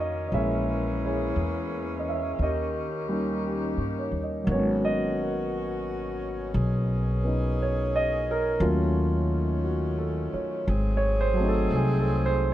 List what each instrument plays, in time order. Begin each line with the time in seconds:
Already playing: upright bass F2, saxophone section D#3 A#3 C#4, grand piano D#3 A#3 C#4 D#4 F#4 A#4 C#5
0.00 grand piano D#5
0.28 upright bass A#1, grand piano D#5
0.32 saxophone section E3 G#4, grand piano G#3 A#3 C#4 E4 G#4 C#5 E5
1.05 grand piano E4 G#4 C#5
1.36 upright bass E2
1.99 grand piano D#5
2.09 grand piano E5
2.39 upright bass D#2, saxophone section D#3 G4, grand piano G4 A#4 D#5
3.08 grand piano G3 A#3 C#4
3.13 grand piano D#4
3.46 grand piano G4
3.71 grand piano A#4
3.77 upright bass G2
3.99 grand piano C#5
4.11 upright bass D#2
4.23 grand piano D#5
4.43 upright bass G#1, saxophone section B2 C#4 F#4, grand piano F#3 A#3
4.51 grand piano B3 C#4 C#5
4.85 grand piano D#5
5.20 grand piano A#4
6.54 upright bass B1, saxophone section G#4
7.23 grand piano B3 C#4 D#4
7.62 grand piano C#5
7.96 grand piano D#5
8.31 grand piano A#4
8.60 upright bass D#2, saxophone section D#3 A3, grand piano F#3 A3 C#4 F4
9.64 grand piano F#4
9.98 grand piano A4
10.33 grand piano C#5, muted upright bass stroke
10.66 upright bass G#1, saxophone section F#3 C4 G#4
10.97 grand piano C#5
11.21 grand piano C5
11.33 grand piano F#3 A3
11.40 grand piano C4 D#4
11.48 grand piano A4
11.71 upright bass C2
11.75 grand piano G#4
12.00 grand piano A4
12.26 grand piano C5